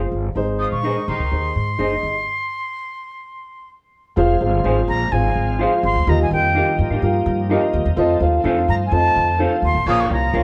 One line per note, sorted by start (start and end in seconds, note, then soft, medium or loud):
0.00 0.22 F4 medium
0.00 0.22 G#4 medium
0.00 0.23 C5 medium
0.12 0.31 G1 medium
0.35 0.64 G#1 medium
0.35 1.03 G#2 medium
0.35 0.70 D#4 loud
0.35 0.70 G#4 loud
0.35 0.71 C5 loud
0.59 0.78 F3 medium
0.59 0.78 F4 medium
0.59 0.71 D#6 medium
0.72 0.91 A#1 medium
0.72 1.10 C#6 loud
0.83 1.03 D#3 medium
0.83 1.17 D#4 medium
0.83 0.95 D#4 medium
0.83 1.03 D#4 medium
0.83 1.18 G#4 medium
0.83 0.95 G#4 medium
0.83 0.89 B4 medium
0.83 0.95 C5 medium
0.83 0.95 D#5 medium
0.90 1.21 C5 medium
1.08 1.17 C2 medium
1.08 1.52 D#3 medium
1.08 1.52 D#4 medium
1.08 3.70 C6 loud
1.19 1.29 C#2 medium
1.30 1.50 D#2 medium
1.30 1.65 D#4 medium
1.30 1.65 G#4 medium
1.30 1.66 C5 medium
1.55 1.74 G#2 medium
1.78 1.98 F#1 medium
1.78 2.13 D#4 medium
1.78 1.90 D#4 medium
1.78 2.13 G#4 medium
1.78 1.90 G#4 medium
1.78 1.90 C5 medium
1.78 2.13 D#5 medium
1.78 1.91 D#5 medium
2.03 2.22 G1 medium
4.16 4.36 F1 loud
4.16 10.43 F3 medium
4.16 6.05 G#3 medium
4.16 6.05 C4 medium
4.16 4.34 F4 loud
4.16 6.05 F4 medium
4.16 4.34 G#4 loud
4.16 4.34 C5 loud
4.16 4.35 F5 loud
4.40 4.60 G1 medium
4.40 4.57 F4 medium
4.40 4.58 G#4 medium
4.40 4.58 C5 medium
4.40 4.58 F5 medium
4.63 4.83 G#1 medium
4.63 4.98 F4 medium
4.63 4.76 F4 medium
4.63 4.99 G#4 medium
4.63 4.76 G#4 medium
4.63 4.99 C5 medium
4.63 4.76 C5 medium
4.63 4.76 F5 medium
4.63 4.99 G#5 medium
4.88 5.07 A#1 medium
4.88 5.14 A#5 loud
5.11 5.31 G#1 loud
5.11 5.46 F4 medium
5.11 5.46 G#4 medium
5.11 5.47 C5 medium
5.11 5.47 F5 medium
5.11 5.59 G#5 medium
5.36 5.64 G#1 medium
5.59 5.71 F4 medium
5.59 5.94 F4 medium
5.59 5.94 G#4 medium
5.59 5.71 G#4 medium
5.59 5.71 C5 medium
5.59 5.94 C5 medium
5.59 5.71 F5 loud
5.59 5.95 F5 medium
5.83 5.93 G1 medium
5.83 6.11 C6 loud
5.95 6.05 D2 medium
6.07 6.26 D#2 loud
6.07 6.75 D#3 medium
6.07 7.95 G3 medium
6.07 7.96 A#3 medium
6.07 9.83 D#4 medium
6.07 6.24 F4 loud
6.07 6.24 G4 medium
6.07 6.25 A#4 medium
6.07 6.25 D#5 loud
6.07 6.20 A#5 loud
6.23 6.32 G#5 medium
6.31 6.59 F2 loud
6.31 6.48 G4 medium
6.31 6.49 A#4 medium
6.31 6.49 D#5 medium
6.31 6.76 G5 medium
6.55 6.66 D#4 medium
6.55 6.89 F4 medium
6.55 6.66 G4 medium
6.55 6.89 G4 medium
6.55 6.66 A#4 medium
6.55 6.89 A#4 medium
6.55 6.90 D#5 medium
6.55 6.67 F5 medium
6.79 6.88 G2 medium
6.90 7.00 G#2 medium
6.90 7.00 D#4 medium
6.90 7.00 G4 medium
6.90 6.99 A#4 medium
6.90 6.99 F5 medium
7.02 7.21 G2 medium
7.02 7.36 F4 medium
7.02 7.37 G4 medium
7.02 7.37 A#4 medium
7.02 7.37 F5 loud
7.26 7.54 G2 loud
7.49 7.61 D#4 loud
7.49 7.84 F4 medium
7.49 7.84 G4 medium
7.49 7.61 G4 medium
7.49 7.84 A#4 medium
7.49 7.61 A#4 medium
7.49 7.84 D#5 loud
7.49 7.62 F5 loud
7.73 7.83 D#2 medium
7.86 7.95 E2 medium
7.96 8.16 F2 loud
7.96 9.84 A3 medium
7.96 9.84 C4 medium
7.96 8.14 F4 loud
7.96 8.14 A4 loud
7.96 8.14 C5 loud
7.96 8.15 D#5 loud
8.20 8.39 D#2 medium
8.20 8.37 F4 medium
8.20 8.38 A4 medium
8.20 8.38 C5 medium
8.20 8.39 F5 loud
8.44 8.63 F2 medium
8.44 8.55 D#4 medium
8.44 8.78 F4 medium
8.44 8.79 A4 medium
8.44 8.56 A4 medium
8.44 8.56 C5 medium
8.44 8.79 C5 medium
8.44 8.56 F5 loud
8.44 8.79 F5 loud
8.68 8.87 G2 medium
8.68 8.75 A#5 loud
8.86 8.94 G#5 medium
8.91 9.11 F2 loud
8.91 9.26 F4 medium
8.91 9.26 A4 medium
8.91 9.26 C5 medium
8.91 9.27 D#5 medium
8.91 9.40 A5 loud
9.16 9.44 F2 medium
9.38 9.50 D#4 medium
9.38 9.73 F4 medium
9.38 9.73 A4 medium
9.38 9.51 A4 medium
9.38 9.73 C5 medium
9.38 9.51 C5 medium
9.38 9.74 F5 medium
9.38 9.51 F5 medium
9.62 9.72 D#2 medium
9.62 9.86 C6 loud
9.74 9.84 A1 medium
9.86 10.05 A#1 medium
9.86 10.43 A#2 medium
9.86 10.17 C#3 loud
9.86 10.17 F3 loud
9.86 10.43 A#3 medium
9.86 10.17 A#3 loud
9.86 10.43 C#4 medium
9.86 10.03 F4 medium
9.86 10.43 F4 medium
9.86 10.17 F4 loud
9.86 10.04 A#4 medium
9.86 10.04 C#5 medium
9.86 10.04 F5 loud
9.86 10.02 D#6 loud
10.00 10.11 C#6 medium
10.09 10.29 C2 medium
10.09 10.27 F4 medium
10.09 10.27 A#4 medium
10.09 10.27 C#5 medium
10.09 10.28 F5 medium
10.09 10.43 A#5 medium
10.33 10.43 C#2 loud
10.33 10.43 F4 medium
10.33 10.43 A#4 medium
10.33 10.43 C#5 medium
10.33 10.43 F5 medium